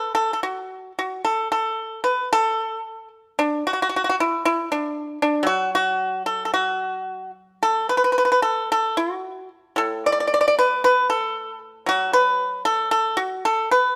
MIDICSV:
0, 0, Header, 1, 2, 480
1, 0, Start_track
1, 0, Tempo, 1088929
1, 527, Time_signature, 2, 2, 24, 8
1, 1484, Tempo, 1045296
1, 2924, Tempo, 1096892
1, 4364, Tempo, 1050788
1, 6266, End_track
2, 0, Start_track
2, 0, Title_t, "Pipa"
2, 0, Program_c, 0, 105
2, 0, Note_on_c, 0, 69, 59
2, 50, Note_off_c, 0, 69, 0
2, 65, Note_on_c, 0, 69, 64
2, 140, Note_off_c, 0, 69, 0
2, 147, Note_on_c, 0, 69, 47
2, 172, Note_off_c, 0, 69, 0
2, 190, Note_on_c, 0, 66, 56
2, 403, Note_off_c, 0, 66, 0
2, 435, Note_on_c, 0, 66, 59
2, 533, Note_off_c, 0, 66, 0
2, 549, Note_on_c, 0, 69, 65
2, 650, Note_off_c, 0, 69, 0
2, 669, Note_on_c, 0, 69, 66
2, 880, Note_off_c, 0, 69, 0
2, 898, Note_on_c, 0, 71, 64
2, 1003, Note_off_c, 0, 71, 0
2, 1025, Note_on_c, 0, 69, 79
2, 1356, Note_off_c, 0, 69, 0
2, 1494, Note_on_c, 0, 62, 72
2, 1604, Note_off_c, 0, 62, 0
2, 1622, Note_on_c, 0, 66, 73
2, 1646, Note_off_c, 0, 66, 0
2, 1652, Note_on_c, 0, 66, 44
2, 1677, Note_off_c, 0, 66, 0
2, 1693, Note_on_c, 0, 66, 55
2, 1715, Note_off_c, 0, 66, 0
2, 1726, Note_on_c, 0, 66, 46
2, 1747, Note_off_c, 0, 66, 0
2, 1758, Note_on_c, 0, 66, 61
2, 1780, Note_off_c, 0, 66, 0
2, 1794, Note_on_c, 0, 66, 52
2, 1813, Note_off_c, 0, 66, 0
2, 1818, Note_on_c, 0, 66, 61
2, 1842, Note_off_c, 0, 66, 0
2, 1868, Note_on_c, 0, 64, 70
2, 1971, Note_off_c, 0, 64, 0
2, 1984, Note_on_c, 0, 64, 77
2, 2087, Note_off_c, 0, 64, 0
2, 2104, Note_on_c, 0, 62, 66
2, 2316, Note_off_c, 0, 62, 0
2, 2336, Note_on_c, 0, 62, 74
2, 2431, Note_on_c, 0, 54, 55
2, 2440, Note_off_c, 0, 62, 0
2, 2448, Note_on_c, 0, 66, 73
2, 2554, Note_off_c, 0, 66, 0
2, 2578, Note_on_c, 0, 66, 72
2, 2793, Note_off_c, 0, 66, 0
2, 2813, Note_on_c, 0, 69, 62
2, 2892, Note_off_c, 0, 69, 0
2, 2901, Note_on_c, 0, 69, 49
2, 2927, Note_off_c, 0, 69, 0
2, 2939, Note_on_c, 0, 66, 68
2, 3274, Note_off_c, 0, 66, 0
2, 3416, Note_on_c, 0, 69, 72
2, 3526, Note_off_c, 0, 69, 0
2, 3532, Note_on_c, 0, 71, 65
2, 3562, Note_off_c, 0, 71, 0
2, 3567, Note_on_c, 0, 71, 50
2, 3592, Note_off_c, 0, 71, 0
2, 3598, Note_on_c, 0, 71, 52
2, 3627, Note_off_c, 0, 71, 0
2, 3633, Note_on_c, 0, 71, 48
2, 3653, Note_off_c, 0, 71, 0
2, 3658, Note_on_c, 0, 71, 59
2, 3683, Note_off_c, 0, 71, 0
2, 3689, Note_on_c, 0, 71, 46
2, 3713, Note_off_c, 0, 71, 0
2, 3718, Note_on_c, 0, 71, 58
2, 3753, Note_off_c, 0, 71, 0
2, 3765, Note_on_c, 0, 69, 64
2, 3881, Note_off_c, 0, 69, 0
2, 3888, Note_off_c, 0, 54, 0
2, 3893, Note_on_c, 0, 69, 74
2, 4004, Note_off_c, 0, 69, 0
2, 4004, Note_on_c, 0, 66, 69
2, 4227, Note_off_c, 0, 66, 0
2, 4350, Note_on_c, 0, 45, 56
2, 4358, Note_on_c, 0, 69, 76
2, 4472, Note_off_c, 0, 69, 0
2, 4487, Note_on_c, 0, 74, 68
2, 4510, Note_off_c, 0, 74, 0
2, 4515, Note_on_c, 0, 74, 50
2, 4546, Note_off_c, 0, 74, 0
2, 4551, Note_on_c, 0, 74, 62
2, 4578, Note_off_c, 0, 74, 0
2, 4584, Note_on_c, 0, 74, 51
2, 4607, Note_off_c, 0, 74, 0
2, 4613, Note_on_c, 0, 74, 64
2, 4639, Note_off_c, 0, 74, 0
2, 4645, Note_on_c, 0, 74, 58
2, 4671, Note_off_c, 0, 74, 0
2, 4676, Note_on_c, 0, 74, 64
2, 4707, Note_off_c, 0, 74, 0
2, 4726, Note_on_c, 0, 71, 71
2, 4835, Note_off_c, 0, 71, 0
2, 4843, Note_on_c, 0, 71, 84
2, 4953, Note_off_c, 0, 71, 0
2, 4959, Note_on_c, 0, 69, 66
2, 5182, Note_off_c, 0, 69, 0
2, 5310, Note_on_c, 0, 54, 57
2, 5320, Note_on_c, 0, 66, 77
2, 5432, Note_off_c, 0, 66, 0
2, 5433, Note_on_c, 0, 71, 77
2, 5660, Note_off_c, 0, 71, 0
2, 5670, Note_on_c, 0, 69, 77
2, 5784, Note_off_c, 0, 69, 0
2, 5789, Note_on_c, 0, 69, 77
2, 5792, Note_off_c, 0, 45, 0
2, 5906, Note_off_c, 0, 69, 0
2, 5906, Note_on_c, 0, 66, 75
2, 6025, Note_off_c, 0, 66, 0
2, 6035, Note_on_c, 0, 69, 68
2, 6151, Note_off_c, 0, 69, 0
2, 6155, Note_on_c, 0, 71, 68
2, 6266, Note_off_c, 0, 54, 0
2, 6266, Note_off_c, 0, 71, 0
2, 6266, End_track
0, 0, End_of_file